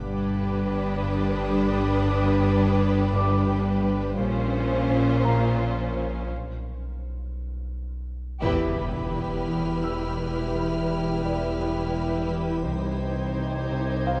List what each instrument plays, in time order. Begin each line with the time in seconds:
Already playing: double bass section G1, sub bass G1, harp G2 B3, cello section G2, ambient pad D4 B4 G5, viola section D4, violin section G4 B4 D6, grand piano F6
0.31 harp G2
0.67 harp G2, violin section D#6
1.02 harp G2
1.37 harp G2
1.72 harp G3
2.07 harp G2
2.42 harp G2
2.77 harp G2
3.12 harp G2, grand piano D6
3.48 harp G2
3.83 harp G3
4.17 sub bass A#1, double bass section A#1, harp A#2, cello section A#2, viola section C#4, ambient pad C#4 C5 F5, violin section F4 C5
4.53 harp A#2
4.89 harp A#2
5.25 harp A#2, grand piano A#5
5.60 harp A#2
5.95 harp A#3
6.30 sub bass B1
8.41 sub bass E1, double bass section E1, harp E2, cello section E2, french horn section G3 E4, ambient pad E4 B4 G5, viola section E4, violin section G4 B4 B5, impact
8.77 harp E3
9.12 harp E2, violin section F6
9.48 harp E2
9.83 harp E3, grand piano E6
10.19 harp E2
10.54 harp E2
10.88 harp E3
11.24 harp E2, grand piano D5
11.60 harp E2
11.95 harp E3
12.30 harp E2
12.65 double bass section C2, sub bass C2, cello section C2, harp C3, french horn section G3 D#4, ambient pad D#4 G4 C5, viola section D#4, violin section G4 C5 G6 G#6
13.01 harp C4
13.36 harp C3
13.71 harp C3
14.06 harp C4, grand piano F5